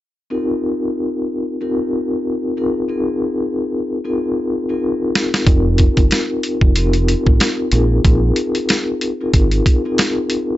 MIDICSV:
0, 0, Header, 1, 4, 480
1, 0, Start_track
1, 0, Tempo, 645161
1, 227, Time_signature, 4, 2, 24, 8
1, 7866, End_track
2, 0, Start_track
2, 0, Title_t, "Vibraphone"
2, 0, Program_c, 0, 11
2, 224, Note_on_c, 0, 60, 86
2, 226, Note_on_c, 0, 63, 89
2, 228, Note_on_c, 0, 65, 79
2, 229, Note_on_c, 0, 67, 80
2, 231, Note_on_c, 0, 70, 99
2, 1120, Note_off_c, 0, 60, 0
2, 1121, Note_off_c, 0, 63, 0
2, 1122, Note_off_c, 0, 65, 0
2, 1123, Note_off_c, 0, 67, 0
2, 1124, Note_off_c, 0, 70, 0
2, 1197, Note_on_c, 0, 60, 92
2, 1198, Note_on_c, 0, 63, 80
2, 1200, Note_on_c, 0, 65, 81
2, 1201, Note_on_c, 0, 67, 83
2, 1203, Note_on_c, 0, 70, 107
2, 1903, Note_off_c, 0, 60, 0
2, 1905, Note_off_c, 0, 63, 0
2, 1907, Note_off_c, 0, 65, 0
2, 1910, Note_off_c, 0, 70, 0
2, 1912, Note_on_c, 0, 60, 85
2, 1914, Note_off_c, 0, 67, 0
2, 1914, Note_on_c, 0, 63, 85
2, 1916, Note_on_c, 0, 65, 83
2, 1917, Note_on_c, 0, 68, 85
2, 1919, Note_on_c, 0, 70, 101
2, 2072, Note_off_c, 0, 60, 0
2, 2073, Note_off_c, 0, 63, 0
2, 2074, Note_off_c, 0, 65, 0
2, 2074, Note_off_c, 0, 68, 0
2, 2075, Note_off_c, 0, 70, 0
2, 2147, Note_on_c, 0, 60, 88
2, 2149, Note_on_c, 0, 63, 83
2, 2151, Note_on_c, 0, 65, 80
2, 2153, Note_on_c, 0, 68, 88
2, 2154, Note_on_c, 0, 70, 102
2, 2928, Note_off_c, 0, 60, 0
2, 2929, Note_off_c, 0, 63, 0
2, 2929, Note_off_c, 0, 65, 0
2, 2930, Note_off_c, 0, 68, 0
2, 2931, Note_off_c, 0, 70, 0
2, 3010, Note_on_c, 0, 60, 83
2, 3011, Note_on_c, 0, 63, 76
2, 3013, Note_on_c, 0, 65, 84
2, 3015, Note_on_c, 0, 68, 74
2, 3017, Note_on_c, 0, 70, 99
2, 3443, Note_off_c, 0, 60, 0
2, 3444, Note_off_c, 0, 63, 0
2, 3445, Note_off_c, 0, 65, 0
2, 3446, Note_off_c, 0, 68, 0
2, 3447, Note_off_c, 0, 70, 0
2, 3490, Note_on_c, 0, 60, 87
2, 3491, Note_on_c, 0, 63, 83
2, 3493, Note_on_c, 0, 65, 82
2, 3495, Note_on_c, 0, 68, 74
2, 3497, Note_on_c, 0, 70, 96
2, 4029, Note_off_c, 0, 60, 0
2, 4029, Note_off_c, 0, 63, 0
2, 4030, Note_off_c, 0, 65, 0
2, 4031, Note_off_c, 0, 68, 0
2, 4032, Note_off_c, 0, 70, 0
2, 4065, Note_on_c, 0, 60, 88
2, 4066, Note_on_c, 0, 63, 88
2, 4068, Note_on_c, 0, 65, 80
2, 4069, Note_on_c, 0, 67, 82
2, 4960, Note_off_c, 0, 60, 0
2, 4961, Note_off_c, 0, 63, 0
2, 4962, Note_off_c, 0, 65, 0
2, 4963, Note_off_c, 0, 67, 0
2, 5036, Note_on_c, 0, 60, 97
2, 5038, Note_on_c, 0, 63, 83
2, 5040, Note_on_c, 0, 65, 83
2, 5041, Note_on_c, 0, 67, 86
2, 5043, Note_on_c, 0, 70, 109
2, 5742, Note_off_c, 0, 60, 0
2, 5744, Note_off_c, 0, 63, 0
2, 5746, Note_off_c, 0, 65, 0
2, 5749, Note_off_c, 0, 70, 0
2, 5751, Note_on_c, 0, 60, 86
2, 5753, Note_on_c, 0, 63, 81
2, 5754, Note_off_c, 0, 67, 0
2, 5755, Note_on_c, 0, 65, 86
2, 5757, Note_on_c, 0, 68, 90
2, 5758, Note_on_c, 0, 70, 99
2, 5911, Note_off_c, 0, 60, 0
2, 5912, Note_off_c, 0, 63, 0
2, 5913, Note_off_c, 0, 65, 0
2, 5914, Note_off_c, 0, 68, 0
2, 5915, Note_off_c, 0, 70, 0
2, 5987, Note_on_c, 0, 60, 90
2, 5989, Note_on_c, 0, 63, 85
2, 5990, Note_on_c, 0, 65, 84
2, 5992, Note_on_c, 0, 68, 92
2, 5994, Note_on_c, 0, 70, 106
2, 6768, Note_off_c, 0, 60, 0
2, 6768, Note_off_c, 0, 63, 0
2, 6769, Note_off_c, 0, 65, 0
2, 6770, Note_off_c, 0, 68, 0
2, 6771, Note_off_c, 0, 70, 0
2, 6849, Note_on_c, 0, 60, 84
2, 6851, Note_on_c, 0, 63, 79
2, 6853, Note_on_c, 0, 65, 86
2, 6854, Note_on_c, 0, 68, 78
2, 6856, Note_on_c, 0, 70, 101
2, 7283, Note_off_c, 0, 60, 0
2, 7284, Note_off_c, 0, 63, 0
2, 7285, Note_off_c, 0, 65, 0
2, 7285, Note_off_c, 0, 68, 0
2, 7286, Note_off_c, 0, 70, 0
2, 7330, Note_on_c, 0, 60, 89
2, 7332, Note_on_c, 0, 63, 87
2, 7334, Note_on_c, 0, 65, 86
2, 7335, Note_on_c, 0, 68, 78
2, 7337, Note_on_c, 0, 70, 103
2, 7866, Note_off_c, 0, 60, 0
2, 7866, Note_off_c, 0, 63, 0
2, 7866, Note_off_c, 0, 65, 0
2, 7866, Note_off_c, 0, 68, 0
2, 7866, Note_off_c, 0, 70, 0
2, 7866, End_track
3, 0, Start_track
3, 0, Title_t, "Fingered electric bass"
3, 0, Program_c, 1, 33
3, 4067, Note_on_c, 1, 29, 108
3, 4371, Note_off_c, 1, 29, 0
3, 4444, Note_on_c, 1, 31, 88
3, 4526, Note_off_c, 1, 31, 0
3, 4921, Note_on_c, 1, 29, 87
3, 5308, Note_off_c, 1, 29, 0
3, 5406, Note_on_c, 1, 33, 91
3, 5487, Note_off_c, 1, 33, 0
3, 5747, Note_on_c, 1, 34, 99
3, 5940, Note_off_c, 1, 34, 0
3, 5986, Note_on_c, 1, 34, 110
3, 6179, Note_off_c, 1, 34, 0
3, 6946, Note_on_c, 1, 32, 89
3, 7140, Note_off_c, 1, 32, 0
3, 7866, End_track
4, 0, Start_track
4, 0, Title_t, "Drums"
4, 3835, Note_on_c, 9, 38, 103
4, 3909, Note_off_c, 9, 38, 0
4, 3973, Note_on_c, 9, 38, 89
4, 4047, Note_off_c, 9, 38, 0
4, 4066, Note_on_c, 9, 42, 83
4, 4067, Note_on_c, 9, 36, 111
4, 4141, Note_off_c, 9, 36, 0
4, 4141, Note_off_c, 9, 42, 0
4, 4302, Note_on_c, 9, 42, 74
4, 4312, Note_on_c, 9, 36, 81
4, 4376, Note_off_c, 9, 42, 0
4, 4386, Note_off_c, 9, 36, 0
4, 4442, Note_on_c, 9, 42, 59
4, 4444, Note_on_c, 9, 36, 87
4, 4516, Note_off_c, 9, 42, 0
4, 4518, Note_off_c, 9, 36, 0
4, 4545, Note_on_c, 9, 42, 93
4, 4555, Note_on_c, 9, 38, 109
4, 4619, Note_off_c, 9, 42, 0
4, 4630, Note_off_c, 9, 38, 0
4, 4787, Note_on_c, 9, 42, 70
4, 4861, Note_off_c, 9, 42, 0
4, 4921, Note_on_c, 9, 36, 79
4, 4995, Note_off_c, 9, 36, 0
4, 5026, Note_on_c, 9, 42, 96
4, 5101, Note_off_c, 9, 42, 0
4, 5159, Note_on_c, 9, 42, 55
4, 5233, Note_off_c, 9, 42, 0
4, 5271, Note_on_c, 9, 42, 86
4, 5345, Note_off_c, 9, 42, 0
4, 5406, Note_on_c, 9, 36, 98
4, 5480, Note_off_c, 9, 36, 0
4, 5507, Note_on_c, 9, 42, 87
4, 5514, Note_on_c, 9, 38, 113
4, 5582, Note_off_c, 9, 42, 0
4, 5588, Note_off_c, 9, 38, 0
4, 5740, Note_on_c, 9, 42, 79
4, 5815, Note_off_c, 9, 42, 0
4, 5986, Note_on_c, 9, 36, 114
4, 5986, Note_on_c, 9, 42, 87
4, 6060, Note_off_c, 9, 42, 0
4, 6061, Note_off_c, 9, 36, 0
4, 6221, Note_on_c, 9, 42, 75
4, 6295, Note_off_c, 9, 42, 0
4, 6360, Note_on_c, 9, 42, 60
4, 6434, Note_off_c, 9, 42, 0
4, 6464, Note_on_c, 9, 42, 92
4, 6474, Note_on_c, 9, 38, 112
4, 6538, Note_off_c, 9, 42, 0
4, 6548, Note_off_c, 9, 38, 0
4, 6706, Note_on_c, 9, 42, 69
4, 6780, Note_off_c, 9, 42, 0
4, 6945, Note_on_c, 9, 42, 97
4, 6946, Note_on_c, 9, 36, 97
4, 7020, Note_off_c, 9, 36, 0
4, 7020, Note_off_c, 9, 42, 0
4, 7079, Note_on_c, 9, 42, 54
4, 7153, Note_off_c, 9, 42, 0
4, 7186, Note_on_c, 9, 36, 96
4, 7191, Note_on_c, 9, 42, 87
4, 7261, Note_off_c, 9, 36, 0
4, 7265, Note_off_c, 9, 42, 0
4, 7427, Note_on_c, 9, 42, 87
4, 7433, Note_on_c, 9, 38, 111
4, 7501, Note_off_c, 9, 42, 0
4, 7507, Note_off_c, 9, 38, 0
4, 7661, Note_on_c, 9, 42, 80
4, 7735, Note_off_c, 9, 42, 0
4, 7866, End_track
0, 0, End_of_file